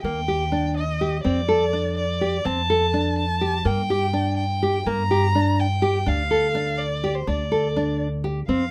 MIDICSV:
0, 0, Header, 1, 4, 480
1, 0, Start_track
1, 0, Tempo, 482315
1, 39, Time_signature, 5, 3, 24, 8
1, 8667, End_track
2, 0, Start_track
2, 0, Title_t, "Violin"
2, 0, Program_c, 0, 40
2, 21, Note_on_c, 0, 79, 81
2, 711, Note_off_c, 0, 79, 0
2, 767, Note_on_c, 0, 75, 73
2, 1211, Note_off_c, 0, 75, 0
2, 1227, Note_on_c, 0, 74, 77
2, 1915, Note_off_c, 0, 74, 0
2, 1964, Note_on_c, 0, 74, 72
2, 2443, Note_on_c, 0, 81, 83
2, 2458, Note_off_c, 0, 74, 0
2, 3160, Note_off_c, 0, 81, 0
2, 3166, Note_on_c, 0, 81, 77
2, 3639, Note_on_c, 0, 79, 79
2, 3654, Note_off_c, 0, 81, 0
2, 4342, Note_off_c, 0, 79, 0
2, 4348, Note_on_c, 0, 79, 77
2, 4842, Note_on_c, 0, 82, 85
2, 4857, Note_off_c, 0, 79, 0
2, 5570, Note_on_c, 0, 79, 78
2, 5585, Note_off_c, 0, 82, 0
2, 6044, Note_on_c, 0, 77, 86
2, 6059, Note_off_c, 0, 79, 0
2, 6750, Note_on_c, 0, 74, 79
2, 6765, Note_off_c, 0, 77, 0
2, 7113, Note_on_c, 0, 72, 70
2, 7128, Note_off_c, 0, 74, 0
2, 7238, Note_on_c, 0, 74, 68
2, 7253, Note_off_c, 0, 72, 0
2, 7958, Note_off_c, 0, 74, 0
2, 8446, Note_on_c, 0, 77, 68
2, 8667, Note_off_c, 0, 77, 0
2, 8667, End_track
3, 0, Start_track
3, 0, Title_t, "Nylon-string guitar"
3, 0, Program_c, 1, 24
3, 45, Note_on_c, 1, 58, 72
3, 194, Note_off_c, 1, 58, 0
3, 279, Note_on_c, 1, 67, 62
3, 431, Note_off_c, 1, 67, 0
3, 516, Note_on_c, 1, 62, 60
3, 819, Note_off_c, 1, 62, 0
3, 1005, Note_on_c, 1, 67, 64
3, 1155, Note_off_c, 1, 67, 0
3, 1239, Note_on_c, 1, 60, 72
3, 1390, Note_off_c, 1, 60, 0
3, 1477, Note_on_c, 1, 69, 65
3, 1630, Note_off_c, 1, 69, 0
3, 1722, Note_on_c, 1, 62, 61
3, 2024, Note_off_c, 1, 62, 0
3, 2202, Note_on_c, 1, 67, 64
3, 2353, Note_off_c, 1, 67, 0
3, 2439, Note_on_c, 1, 60, 73
3, 2591, Note_off_c, 1, 60, 0
3, 2685, Note_on_c, 1, 69, 64
3, 2835, Note_off_c, 1, 69, 0
3, 2922, Note_on_c, 1, 62, 62
3, 3224, Note_off_c, 1, 62, 0
3, 3396, Note_on_c, 1, 67, 63
3, 3549, Note_off_c, 1, 67, 0
3, 3633, Note_on_c, 1, 58, 72
3, 3787, Note_off_c, 1, 58, 0
3, 3882, Note_on_c, 1, 67, 59
3, 4034, Note_off_c, 1, 67, 0
3, 4113, Note_on_c, 1, 62, 62
3, 4418, Note_off_c, 1, 62, 0
3, 4603, Note_on_c, 1, 67, 63
3, 4754, Note_off_c, 1, 67, 0
3, 4844, Note_on_c, 1, 58, 74
3, 4995, Note_off_c, 1, 58, 0
3, 5083, Note_on_c, 1, 67, 64
3, 5234, Note_off_c, 1, 67, 0
3, 5326, Note_on_c, 1, 62, 66
3, 5627, Note_off_c, 1, 62, 0
3, 5792, Note_on_c, 1, 67, 68
3, 5946, Note_off_c, 1, 67, 0
3, 6034, Note_on_c, 1, 62, 71
3, 6187, Note_off_c, 1, 62, 0
3, 6277, Note_on_c, 1, 69, 64
3, 6430, Note_off_c, 1, 69, 0
3, 6515, Note_on_c, 1, 62, 67
3, 6819, Note_off_c, 1, 62, 0
3, 7002, Note_on_c, 1, 67, 66
3, 7153, Note_off_c, 1, 67, 0
3, 7238, Note_on_c, 1, 62, 74
3, 7390, Note_off_c, 1, 62, 0
3, 7480, Note_on_c, 1, 69, 59
3, 7631, Note_off_c, 1, 69, 0
3, 7727, Note_on_c, 1, 62, 66
3, 8026, Note_off_c, 1, 62, 0
3, 8200, Note_on_c, 1, 67, 63
3, 8351, Note_off_c, 1, 67, 0
3, 8446, Note_on_c, 1, 60, 73
3, 8594, Note_off_c, 1, 60, 0
3, 8667, End_track
4, 0, Start_track
4, 0, Title_t, "Upright bass"
4, 0, Program_c, 2, 32
4, 32, Note_on_c, 2, 39, 62
4, 1213, Note_off_c, 2, 39, 0
4, 1250, Note_on_c, 2, 41, 63
4, 2423, Note_off_c, 2, 41, 0
4, 2438, Note_on_c, 2, 41, 64
4, 3617, Note_off_c, 2, 41, 0
4, 3633, Note_on_c, 2, 43, 64
4, 4814, Note_off_c, 2, 43, 0
4, 4839, Note_on_c, 2, 43, 61
4, 6016, Note_off_c, 2, 43, 0
4, 6037, Note_on_c, 2, 38, 65
4, 7215, Note_off_c, 2, 38, 0
4, 7242, Note_on_c, 2, 38, 65
4, 8415, Note_off_c, 2, 38, 0
4, 8440, Note_on_c, 2, 41, 62
4, 8667, Note_off_c, 2, 41, 0
4, 8667, End_track
0, 0, End_of_file